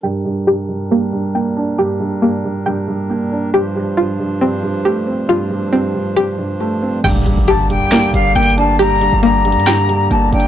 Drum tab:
CC |------------------------|------------------------|------------------------|------------------------|
HH |------------------------|------------------------|------------------------|------------------------|
CP |------------------------|------------------------|------------------------|------------------------|
SD |------------------------|------------------------|------------------------|------------------------|

CC |x-----------------------|------------------------|
HH |x--x--x--x--x--x--xxxx--|x--x--x--xxxx--x--x--xx-|
CP |------------x-----------|------------x-----------|
SD |------------o-----------|------------o-----------|